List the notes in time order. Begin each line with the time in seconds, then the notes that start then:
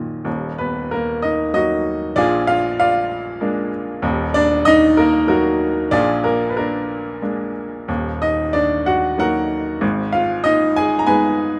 Already playing: D#2 A#2 D#3 F#3 D#4
0.25 D#1 D#2
0.58 B3 B4
0.91 A#3 A#4
1.22 D#4 D#5
1.53 F#3 A#3 D#4 F#4 D#5
2.16 A#1 A#2 D4 F4 G#4 D5
2.47 F4 F5
2.80 F4 D5 F5
3.41 G#3 A#3 D4
4.02 D#1 D#2
4.34 D4 D5
4.65 D#4 D#5
4.97 A#3 A#4
5.27 F#3 A#3 D#4 F#4 A#4
5.91 A#1 A#2 D4 F4 G#4 D5
6.24 A#3 A#4
6.49 B4
6.57 A#3 D4 A#4
7.22 G#3 A#3 D4
7.88 D#1 D#2
8.22 D#4 D#5
8.53 D4 D5
8.86 F#4 F#5
9.18 F#3 A#3 D#4 F#4 A#4 F#5
9.81 G#1 G#2
10.13 F4 F5
10.44 D#4 D#5
10.76 G#4 G#5
10.99 A#5
11.07 G#3 B3 D#4 G#4 B4 G#5